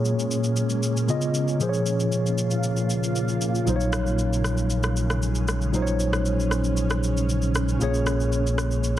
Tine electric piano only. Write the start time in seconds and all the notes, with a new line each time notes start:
Already playing: A#2 A#3 G#4 C#5
1.08 C#3 B3 F4 D#5
1.59 A#2 F3 G#4 C5
1.69 C#5
3.66 A#2 F#3 D#4 C5
3.76 C#5
5.72 A#2 F#3 D#4 C5
5.82 C#5
7.79 A#2 A#3 G#4 C#5